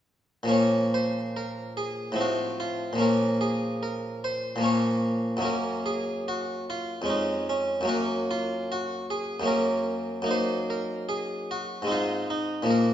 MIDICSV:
0, 0, Header, 1, 2, 480
1, 0, Start_track
1, 0, Key_signature, -5, "minor"
1, 0, Tempo, 839161
1, 293, Time_signature, 3, 2, 24, 8
1, 1730, Tempo, 818554
1, 3170, Tempo, 801068
1, 7639, End_track
2, 0, Start_track
2, 0, Title_t, "Harpsichord"
2, 0, Program_c, 0, 6
2, 248, Note_on_c, 0, 46, 38
2, 259, Note_on_c, 0, 53, 33
2, 272, Note_on_c, 0, 58, 30
2, 281, Note_on_c, 0, 61, 31
2, 295, Note_on_c, 0, 73, 66
2, 500, Note_off_c, 0, 73, 0
2, 539, Note_on_c, 0, 72, 71
2, 742, Note_off_c, 0, 72, 0
2, 781, Note_on_c, 0, 70, 64
2, 983, Note_off_c, 0, 70, 0
2, 1013, Note_on_c, 0, 68, 66
2, 1210, Note_off_c, 0, 46, 0
2, 1213, Note_on_c, 0, 45, 37
2, 1215, Note_off_c, 0, 53, 0
2, 1218, Note_off_c, 0, 68, 0
2, 1222, Note_off_c, 0, 58, 0
2, 1223, Note_on_c, 0, 53, 30
2, 1226, Note_off_c, 0, 61, 0
2, 1234, Note_on_c, 0, 60, 28
2, 1262, Note_on_c, 0, 66, 62
2, 1461, Note_off_c, 0, 66, 0
2, 1487, Note_on_c, 0, 65, 60
2, 1675, Note_on_c, 0, 46, 39
2, 1683, Note_off_c, 0, 53, 0
2, 1690, Note_on_c, 0, 53, 31
2, 1692, Note_off_c, 0, 65, 0
2, 1695, Note_off_c, 0, 45, 0
2, 1705, Note_on_c, 0, 58, 32
2, 1706, Note_off_c, 0, 60, 0
2, 1715, Note_on_c, 0, 61, 31
2, 1727, Note_on_c, 0, 70, 66
2, 1956, Note_on_c, 0, 68, 68
2, 1971, Note_off_c, 0, 70, 0
2, 2201, Note_on_c, 0, 70, 67
2, 2204, Note_off_c, 0, 68, 0
2, 2410, Note_off_c, 0, 70, 0
2, 2444, Note_on_c, 0, 72, 77
2, 2622, Note_off_c, 0, 46, 0
2, 2629, Note_on_c, 0, 46, 41
2, 2635, Note_off_c, 0, 53, 0
2, 2642, Note_on_c, 0, 53, 33
2, 2651, Note_off_c, 0, 58, 0
2, 2658, Note_on_c, 0, 58, 33
2, 2661, Note_off_c, 0, 61, 0
2, 2671, Note_on_c, 0, 61, 32
2, 2679, Note_on_c, 0, 73, 72
2, 2689, Note_off_c, 0, 72, 0
2, 3105, Note_on_c, 0, 42, 38
2, 3112, Note_on_c, 0, 54, 33
2, 3118, Note_off_c, 0, 58, 0
2, 3123, Note_off_c, 0, 46, 0
2, 3125, Note_on_c, 0, 58, 32
2, 3127, Note_off_c, 0, 61, 0
2, 3130, Note_off_c, 0, 53, 0
2, 3134, Note_on_c, 0, 61, 33
2, 3151, Note_on_c, 0, 70, 69
2, 3163, Note_off_c, 0, 73, 0
2, 3396, Note_on_c, 0, 68, 76
2, 3403, Note_off_c, 0, 70, 0
2, 3611, Note_off_c, 0, 68, 0
2, 3651, Note_on_c, 0, 66, 72
2, 3860, Note_off_c, 0, 66, 0
2, 3900, Note_on_c, 0, 65, 70
2, 4084, Note_off_c, 0, 42, 0
2, 4087, Note_off_c, 0, 54, 0
2, 4091, Note_on_c, 0, 41, 39
2, 4094, Note_off_c, 0, 58, 0
2, 4098, Note_off_c, 0, 61, 0
2, 4102, Note_on_c, 0, 56, 32
2, 4114, Note_on_c, 0, 61, 34
2, 4139, Note_on_c, 0, 63, 65
2, 4141, Note_off_c, 0, 65, 0
2, 4370, Note_off_c, 0, 61, 0
2, 4377, Note_on_c, 0, 61, 63
2, 4381, Note_off_c, 0, 63, 0
2, 4566, Note_on_c, 0, 42, 44
2, 4577, Note_on_c, 0, 54, 35
2, 4583, Note_off_c, 0, 41, 0
2, 4589, Note_off_c, 0, 56, 0
2, 4590, Note_on_c, 0, 58, 37
2, 4597, Note_off_c, 0, 61, 0
2, 4604, Note_on_c, 0, 61, 36
2, 4614, Note_on_c, 0, 66, 72
2, 4859, Note_off_c, 0, 66, 0
2, 4864, Note_on_c, 0, 65, 72
2, 5101, Note_off_c, 0, 65, 0
2, 5110, Note_on_c, 0, 66, 77
2, 5306, Note_off_c, 0, 66, 0
2, 5341, Note_on_c, 0, 68, 74
2, 5509, Note_off_c, 0, 42, 0
2, 5517, Note_on_c, 0, 42, 44
2, 5519, Note_off_c, 0, 54, 0
2, 5526, Note_on_c, 0, 54, 36
2, 5531, Note_off_c, 0, 58, 0
2, 5537, Note_on_c, 0, 58, 37
2, 5538, Note_off_c, 0, 61, 0
2, 5551, Note_on_c, 0, 61, 37
2, 5563, Note_on_c, 0, 70, 78
2, 5575, Note_off_c, 0, 68, 0
2, 5973, Note_off_c, 0, 70, 0
2, 6004, Note_off_c, 0, 42, 0
2, 6011, Note_on_c, 0, 42, 43
2, 6012, Note_off_c, 0, 54, 0
2, 6014, Note_off_c, 0, 58, 0
2, 6021, Note_on_c, 0, 58, 39
2, 6025, Note_off_c, 0, 61, 0
2, 6035, Note_on_c, 0, 63, 38
2, 6062, Note_on_c, 0, 72, 90
2, 6294, Note_off_c, 0, 72, 0
2, 6298, Note_on_c, 0, 70, 69
2, 6530, Note_on_c, 0, 68, 79
2, 6534, Note_off_c, 0, 70, 0
2, 6771, Note_off_c, 0, 68, 0
2, 6783, Note_on_c, 0, 66, 78
2, 6967, Note_off_c, 0, 42, 0
2, 6971, Note_on_c, 0, 44, 44
2, 6972, Note_off_c, 0, 58, 0
2, 6978, Note_off_c, 0, 63, 0
2, 6984, Note_on_c, 0, 56, 38
2, 6998, Note_on_c, 0, 60, 39
2, 7007, Note_on_c, 0, 63, 38
2, 7016, Note_off_c, 0, 66, 0
2, 7026, Note_on_c, 0, 65, 71
2, 7251, Note_off_c, 0, 63, 0
2, 7256, Note_off_c, 0, 65, 0
2, 7258, Note_on_c, 0, 63, 77
2, 7451, Note_on_c, 0, 46, 45
2, 7452, Note_off_c, 0, 44, 0
2, 7457, Note_off_c, 0, 63, 0
2, 7458, Note_on_c, 0, 53, 40
2, 7459, Note_off_c, 0, 56, 0
2, 7466, Note_off_c, 0, 60, 0
2, 7472, Note_on_c, 0, 58, 41
2, 7498, Note_on_c, 0, 70, 84
2, 7639, Note_off_c, 0, 46, 0
2, 7639, Note_off_c, 0, 53, 0
2, 7639, Note_off_c, 0, 58, 0
2, 7639, Note_off_c, 0, 70, 0
2, 7639, End_track
0, 0, End_of_file